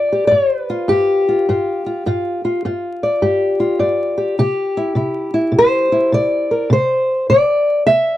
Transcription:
Already playing: G2 D5
0.12 G4
0.27 G2 C#5
0.48 C5
0.61 B4
0.70 F4
0.88 G2 G4
1.29 F4
1.49 G2 F4
1.86 F4
2.06 G2 F4
2.45 F4
2.65 G2 F4
3.03 D5
3.22 G2 G4
3.60 F4
3.79 G2 D5
4.18 G4
4.39 C3 G4
4.77 E4
4.95 C3 E4
5.34 E4
5.52 C3
5.58 C5
5.92 E4
6.12 C3 D5
6.51 A#4
6.70 C3 C5
7.30 C3 D5
7.87 C3 E5

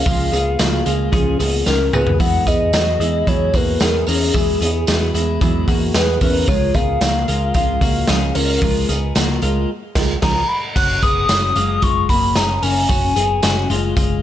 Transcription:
Already playing: F5
0.06 C#2 C#3 F3 G#3 A#3 F4 G#4, kick, hi-hat pedal, open hi-hat, tambourine
0.32 C#2 A#3 B3 F4 G#4, hi-hat pedal, open hi-hat, tambourine
0.59 C#2 F3 A#3 F4 F#4 G#4, snare, hi-hat pedal, open hi-hat, tambourine
0.84 C#2 G#3 A#3 F4 G#4, hi-hat pedal, open hi-hat, tambourine
1.11 C#2 C#3 F3 A#3 C#4 F4 G#4, kick, hi-hat pedal, open hi-hat
1.38 C#2 A#3 B3 F4 G#4, hi-hat pedal, open hi-hat, tambourine
1.65 C#2 F3 A#3 C#4 F4 G#4 A#4, snare, tambourine
1.92 C#2 A#3 B3 F4 G#4 B4, mid tom, tambourine
2.07 floor tom
2.18 E2 E3 F#3 G#3 B3 E4 G#4 F#5, kick, hi-hat pedal, open hi-hat, tambourine
2.45 E2 B3 E4 G#4 D#5, kick, hi-hat pedal, open hi-hat, tambourine
2.72 E2 F#3 B3 E4 F#4 G#4, snare, hi-hat pedal, open hi-hat, tambourine
2.99 E2 G#3 B3 E4 G#4, hi-hat pedal, open hi-hat
3.26 E2 E3 F#3 G#3 B3 E4 G#4 C#5, kick, hi-hat pedal, open hi-hat, tambourine
3.52 E2 A#3 B3 E4 F#4 G#4 B4, kick, hi-hat pedal, open hi-hat, tambourine
3.80 E2 F#3 B3 E4 G#4 A#4, snare, hi-hat pedal, open hi-hat, tambourine
4.06 E2 B3 C#4 E4 G#4 A#4, hi-hat pedal, open hi-hat, tambourine
4.34 E2 E3 F#3 G#3 B3 E4 G#4, kick, hi-hat pedal, open hi-hat, tambourine
4.60 E2 B3 E4 G#4, hi-hat pedal, open hi-hat, tambourine
4.87 E2 F#3 B3 E4 F#4 G#4, snare, hi-hat pedal, open hi-hat, tambourine
5.13 E2 G#3 B3 E4 G#4, hi-hat pedal, open hi-hat, tambourine
5.41 E2 E3 F#3 G#3 B3 E4 G#4, kick, hi-hat pedal, open hi-hat, tambourine
5.66 E2 A#3 B3 E4 F#4 G#4, kick, hi-hat pedal, open hi-hat, tambourine
5.93 E2 F#3 B3 E4 G#4 B4, snare, hi-hat pedal, open hi-hat, tambourine
6.21 E2 B3 C#4 E4 G#4 A#4 B4, kick, hi-hat pedal, open hi-hat, tambourine
6.47 C#2 C#3 F3 G#3 F4 A#4 C#5, kick, hi-hat pedal, open hi-hat, tambourine
6.74 C#2 G#3 B3 F4 G#4 A#4 F5, kick, hi-hat pedal, open hi-hat, tambourine
7.01 C#2 F3 G#3 A#3 F4 F#4 A#4, snare, hi-hat pedal, open hi-hat, tambourine
7.28 C#2 G#3 F4 A#4, hi-hat pedal, open hi-hat, tambourine
7.54 C#2 C#3 F3 G#3 F4 A#4 F5, kick, hi-hat pedal, open hi-hat, tambourine
7.80 C#2 G#3 A#3 F4 F#4 A#4, kick, hi-hat pedal, open hi-hat, tambourine
8.07 C#2 F3 G#3 C#4 F4 G#4 A#4, snare, hi-hat pedal, open hi-hat, tambourine
8.35 C#2 G#3 C#4 F4 A#4, hi-hat pedal, open hi-hat, tambourine
8.62 C#2 C#3 F3 G#3 F4 A#4, kick, hi-hat pedal, open hi-hat, tambourine
8.88 C#2 G#3 B3 F4 G#4 A#4, hi-hat pedal, open hi-hat, tambourine
9.15 C#2 F3 G#3 A#3 F4 F#4 A#4, snare, hi-hat pedal, open hi-hat, tambourine
9.42 C#2 G#3 F4 A#4, hi-hat pedal, open hi-hat, tambourine
9.46 G#3
9.95 C#2 G#3 F4 A#4, kick, snare, crash
10.22 C#2 F3 G#3 C#4 F4 G#4 A#4 A#5, kick, snare, crash
10.48 B5
10.75 F#1 C#4 F#4 F#6, kick, crash, tambourine
11.03 F#1 B3 G#4 D#6, kick, hi-hat pedal, open hi-hat, tambourine
11.29 F#1 C#4 F#4, snare, hi-hat pedal, open hi-hat, tambourine
11.55 F#1 G#3 F4, hi-hat pedal, open hi-hat, tambourine
11.82 F#1 G#3 F4 C#6, kick, hi-hat pedal, open hi-hat
12.09 F#1 A#3 F#4 B5, kick, hi-hat pedal, open hi-hat, tambourine
12.36 F#1 C#4 G#4 A#5, snare, hi-hat pedal, open hi-hat, tambourine
12.63 F#1 C#4 A#4 G#5, hi-hat pedal, open hi-hat, tambourine
12.89 F#1 C#4 F#4, kick, hi-hat pedal, open hi-hat, tambourine
13.16 F#1 B3 G#4, hi-hat pedal, open hi-hat, tambourine
13.43 F#1 C#4 F#4, snare, hi-hat pedal, open hi-hat, tambourine
13.70 F#1 G#3 F4, hi-hat pedal, open hi-hat
13.97 F#1 G#3 F4, kick, hi-hat pedal, open hi-hat, tambourine

